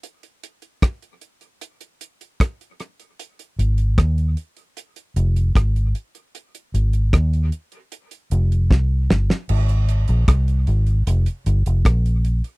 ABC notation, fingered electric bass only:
X:1
M:4/4
L:1/16
Q:1/4=76
K:Ab
V:1 name="Fingered electric bass" clef=bass
z16 | z2 A,,,2 E,,2 z4 F,,,2 A,,,2 z2 | z2 A,,,2 E,,2 z4 F,,,2 C,,2 G,,, z | A,,,3 B,,, C,,2 A,,,2 F,,, z G,,, F,,, B,,,3 z |]